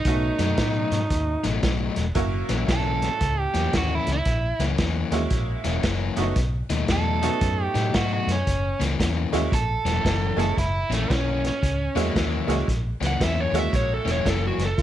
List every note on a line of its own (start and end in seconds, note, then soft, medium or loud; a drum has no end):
0.00 1.44 D#4 medium
0.05 0.30 B1 medium
0.05 1.52 A3 medium
0.05 1.52 B3 medium
0.05 1.53 C#4 medium
0.05 1.53 D#4 medium
0.05 1.53 F#4 medium
0.05 kick medium
0.05 snare soft
0.05 closed hi-hat medium
0.39 0.53 F#2 medium
0.39 0.56 B2 medium
0.39 0.57 F#3 medium
0.39 0.57 A3 medium
0.39 0.57 D#4 medium
0.39 snare soft
0.39 closed hi-hat medium
0.57 0.83 A2 medium
0.57 0.97 B2 medium
0.57 0.97 F#3 medium
0.57 0.97 A3 medium
0.57 0.98 D#4 medium
0.57 kick medium
0.57 snare medium
0.57 closed hi-hat medium
0.91 1.06 G#2 medium
0.91 snare soft
0.91 closed hi-hat medium
1.10 1.35 D#2 medium
1.10 kick medium
1.10 snare soft
1.10 closed hi-hat medium
1.44 1.59 A1 medium
1.44 1.61 B2 medium
1.44 1.61 F#3 medium
1.44 1.62 A3 medium
1.44 1.62 D#4 medium
1.44 snare soft
1.44 closed hi-hat medium
1.62 1.88 B1 medium
1.62 2.02 B2 medium
1.62 2.02 F#3 medium
1.62 2.02 A3 medium
1.62 2.03 D#4 medium
1.62 kick medium
1.62 snare medium
1.62 closed hi-hat medium
1.96 2.11 E1 medium
1.96 snare soft
1.96 closed hi-hat medium
2.15 2.40 F#1 medium
2.15 3.62 F#3 medium
2.15 3.62 A#3 medium
2.15 3.62 C#4 medium
2.15 3.62 E4 medium
2.15 3.63 F#4 medium
2.15 kick medium
2.15 snare soft
2.15 closed hi-hat medium
2.49 2.64 A#1 medium
2.49 2.67 F#2 medium
2.49 2.67 E3 medium
2.49 2.68 A#3 medium
2.49 2.68 C#4 medium
2.49 snare soft
2.49 closed hi-hat medium
2.68 3.07 B1 medium
2.68 3.08 F#2 medium
2.68 3.08 E3 medium
2.68 3.08 A#3 medium
2.68 3.08 C#4 medium
2.68 3.40 A4 loud
2.68 kick medium
2.68 snare loud
2.68 closed hi-hat medium
3.02 snare soft
3.02 closed hi-hat soft
3.21 3.46 C#2 medium
3.21 kick medium
3.21 snare soft
3.21 closed hi-hat medium
3.40 3.72 G4 loud
3.54 3.69 E2 medium
3.54 3.72 F#2 medium
3.54 3.72 E3 medium
3.54 3.73 A#3 medium
3.54 3.73 C#4 medium
3.54 snare soft
3.54 closed hi-hat medium
3.73 3.98 D#2 medium
3.73 4.13 F#2 medium
3.73 4.13 E3 medium
3.73 4.13 A#3 medium
3.73 4.13 C#4 medium
3.73 kick medium
3.73 snare loud
3.73 closed hi-hat medium
3.77 3.95 F#4 medium
3.95 4.10 E4 medium
4.07 4.21 C#2 medium
4.07 snare soft
4.07 closed hi-hat medium
4.12 4.62 E4 medium
4.25 4.51 A#1 medium
4.25 kick medium
4.25 snare soft
4.25 closed hi-hat medium
4.59 4.74 C#2 medium
4.59 4.77 F#2 medium
4.59 4.78 E3 medium
4.59 4.78 A#3 medium
4.59 4.78 C#4 medium
4.59 snare soft
4.59 closed hi-hat medium
4.78 5.03 E2 medium
4.78 5.18 F#2 medium
4.78 5.18 E3 medium
4.78 5.18 A#3 medium
4.78 5.19 C#4 medium
4.78 kick medium
4.78 snare loud
4.78 closed hi-hat medium
5.12 5.26 D#2 medium
5.12 5.80 G#3 medium
5.12 5.80 A#3 medium
5.12 5.80 C#4 medium
5.12 5.80 E4 medium
5.12 5.81 F#4 medium
5.12 snare soft
5.12 closed hi-hat medium
5.30 5.56 A#1 medium
5.30 kick medium
5.30 snare soft
5.30 closed hi-hat medium
5.64 5.79 E1 medium
5.64 5.82 F#2 medium
5.64 5.82 E3 medium
5.64 5.83 A#3 medium
5.64 5.83 C#4 medium
5.64 snare soft
5.64 closed hi-hat medium
5.83 6.08 F#1 medium
5.83 6.23 F#2 medium
5.83 6.23 E3 medium
5.83 6.23 A#3 medium
5.83 6.23 C#4 medium
5.83 kick medium
5.83 snare medium
5.83 closed hi-hat medium
6.16 6.31 F#1 medium
6.16 6.34 A3 medium
6.16 6.34 B3 medium
6.16 6.35 C#4 medium
6.16 6.35 D#4 medium
6.16 6.35 F#4 medium
6.16 snare soft
6.16 closed hi-hat medium
6.36 6.61 B1 medium
6.36 kick medium
6.36 snare soft
6.36 closed hi-hat medium
6.70 6.84 D#2 medium
6.70 6.88 B2 medium
6.70 6.88 F#3 medium
6.70 6.88 A3 medium
6.70 6.89 D#4 medium
6.70 snare soft
6.70 closed hi-hat medium
6.88 7.27 E2 medium
6.88 7.28 B2 medium
6.88 7.29 F#3 medium
6.88 7.29 A3 medium
6.88 7.29 D#4 medium
6.88 7.64 A4 medium
6.88 kick medium
6.88 snare medium
6.88 closed hi-hat medium
7.22 7.90 A3 medium
7.22 7.90 B3 medium
7.22 7.91 C#4 medium
7.22 7.91 D#4 medium
7.22 7.91 F#4 medium
7.22 snare soft
7.22 closed hi-hat medium
7.41 7.66 F#2 medium
7.41 kick medium
7.41 snare soft
7.41 closed hi-hat medium
7.64 7.93 G4 medium
7.74 7.89 A2 medium
7.74 7.92 B2 medium
7.74 7.93 F#3 medium
7.74 7.93 A3 medium
7.74 7.93 D#4 medium
7.74 snare soft
7.74 closed hi-hat medium
7.93 8.19 G#2 medium
7.93 8.33 B2 medium
7.93 8.33 F#3 medium
7.93 8.34 A3 medium
7.93 8.34 D#4 medium
7.93 8.12 F#4 medium
7.93 kick medium
7.93 snare loud
7.93 closed hi-hat medium
8.13 8.30 F#4 medium
8.27 8.41 F#2 medium
8.27 snare soft
8.27 closed hi-hat medium
8.32 8.82 C#4 medium
8.47 8.72 F#1 medium
8.47 kick medium
8.47 snare soft
8.47 closed hi-hat medium
8.80 8.94 C#2 medium
8.80 8.98 F#2 medium
8.80 8.98 E3 medium
8.80 8.99 A#3 medium
8.80 8.99 C#4 medium
8.80 snare soft
8.80 closed hi-hat medium
8.99 9.24 E2 medium
8.99 9.39 F#2 medium
8.99 9.39 E3 medium
8.99 9.39 A#3 medium
8.99 9.39 C#4 medium
8.99 kick medium
8.99 snare medium
8.99 closed hi-hat medium
9.33 9.47 D#2 medium
9.33 9.50 G#3 medium
9.33 9.50 A#3 medium
9.33 9.50 C#4 medium
9.33 9.50 E4 medium
9.33 9.51 F#4 medium
9.33 snare soft
9.33 closed hi-hat medium
9.52 9.77 A#1 medium
9.52 10.37 A4 medium
9.52 kick medium
9.52 snare soft
9.52 closed hi-hat medium
9.85 9.99 E1 medium
9.85 10.03 F#2 medium
9.85 10.03 E3 medium
9.85 10.04 A#3 medium
9.85 10.04 C#4 medium
9.85 snare soft
9.85 closed hi-hat medium
10.04 10.29 F#1 medium
10.04 10.44 F#2 medium
10.04 10.44 E3 medium
10.04 10.44 A#3 medium
10.04 10.44 C#4 medium
10.04 kick medium
10.04 snare loud
10.04 closed hi-hat medium
10.37 10.52 F#1 medium
10.37 10.55 G#3 medium
10.37 10.55 A#3 medium
10.37 10.55 C#4 soft
10.37 10.55 E4 soft
10.37 10.55 G#4 medium
10.37 10.58 A4 medium
10.37 snare soft
10.37 closed hi-hat medium
10.57 10.82 F#1 medium
10.57 10.91 E4 medium
10.57 kick medium
10.57 snare soft
10.57 closed hi-hat medium
10.90 11.04 A#1 medium
10.90 11.08 F#2 medium
10.90 11.08 E3 medium
10.90 11.13 A3 medium
10.90 11.09 A#3 medium
10.90 11.09 C#4 medium
10.90 snare soft
10.90 closed hi-hat medium
11.09 11.49 B1 medium
11.09 11.49 F#2 medium
11.09 11.49 E3 medium
11.09 11.49 A#3 medium
11.09 11.49 C#4 medium
11.09 11.44 C#4 medium
11.09 kick medium
11.09 snare loud
11.09 closed hi-hat medium
11.45 11.96 C#4 medium
11.45 snare soft
11.45 closed hi-hat medium
11.63 11.87 C#2 medium
11.63 kick medium
11.63 snare soft
11.63 closed hi-hat medium
11.95 12.10 E2 medium
11.95 12.14 F#2 medium
11.95 12.14 E3 medium
11.95 12.45 G#3 medium
11.95 12.45 A#3 medium
11.95 12.15 A#3 medium
11.95 12.15 C#4 medium
11.95 12.45 C#4 medium
11.95 12.46 E4 medium
11.95 12.46 F#4 medium
11.95 snare soft
11.95 closed hi-hat medium
12.15 12.40 D#2 medium
12.15 12.54 F#2 medium
12.15 12.55 E3 medium
12.15 12.55 A#3 medium
12.15 12.55 C#4 medium
12.15 kick medium
12.15 snare medium
12.15 closed hi-hat medium
12.48 12.62 C#2 medium
12.48 12.65 G#3 medium
12.48 12.65 A#3 medium
12.48 12.66 C#4 medium
12.48 12.66 E4 medium
12.48 12.66 F#4 medium
12.48 snare soft
12.48 closed hi-hat medium
12.68 12.93 A#1 medium
12.68 kick medium
12.68 snare soft
12.68 closed hi-hat medium
13.01 13.15 C#2 medium
13.01 13.18 F#2 medium
13.01 13.19 E3 medium
13.01 13.19 A#3 medium
13.01 13.20 C#4 medium
13.01 snare soft
13.01 closed hi-hat medium
13.07 13.22 F#5 medium
13.19 13.45 E2 medium
13.19 13.59 F#2 medium
13.19 13.60 E3 medium
13.19 13.60 A#3 medium
13.19 13.60 C#4 medium
13.19 kick medium
13.19 snare loud
13.19 closed hi-hat medium
13.25 13.40 E5 medium
13.40 13.58 C#5 medium
13.52 13.67 D#2 medium
13.52 14.22 G#3 medium
13.52 14.22 A#3 medium
13.52 14.22 C#4 medium
13.52 14.22 E4 medium
13.52 14.22 F#4 medium
13.52 snare soft
13.52 closed hi-hat medium
13.58 13.74 E5 medium
13.73 13.98 A#1 medium
13.73 13.92 C#5 medium
13.73 kick medium
13.73 snare soft
13.73 closed hi-hat medium
13.94 14.09 A4 medium
14.05 14.20 E1 medium
14.05 14.23 F#2 medium
14.05 14.24 E3 medium
14.05 14.24 A#3 medium
14.05 14.25 C#4 medium
14.05 snare soft
14.05 closed hi-hat medium
14.11 14.27 C#5 medium
14.25 14.50 F#1 medium
14.25 14.65 F#2 medium
14.25 14.65 E3 medium
14.25 14.65 A#3 medium
14.25 14.65 C#4 medium
14.25 kick medium
14.25 snare loud
14.25 closed hi-hat medium
14.29 14.44 A4 medium
14.47 14.62 F#4 medium
14.58 14.73 F#1 medium
14.58 snare soft
14.58 closed hi-hat medium
14.65 14.80 A4 medium
14.77 14.82 C#2 medium
14.77 14.82 B3 medium
14.77 14.82 C#4 medium
14.77 14.82 F4 medium
14.77 kick medium
14.77 snare soft
14.77 closed hi-hat medium